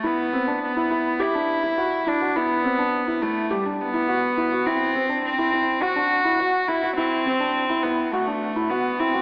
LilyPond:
<<
  \new Staff \with { instrumentName = "Felt piano" } { \time 4/4 \key e \minor \tempo 4 = 104 e'8 c'16 d'8 e'16 e'8 g'16 d'8 e'16 fis'8 e'16 fis'16 | e'8 c'16 d'8 e'16 e'8 g'16 d'8 e'16 fis'8 e'16 fis'16 | e'8 c'16 d'8 e'16 e'8 fis'16 d'8 e'16 fis'8 e'16 fis'16 | e'8 c'16 d'8 e'16 e'8 fis'16 d'8 e'16 fis'8 e'16 fis'16 | }
  \new Staff \with { instrumentName = "Cello" } { \time 4/4 \key e \minor b4 b4 e'4. d'8 | b4. a8 g8 b4. | c'4 c'4 fis'4. e'8 | c'4. b8 a4 b8 c'8 | }
>>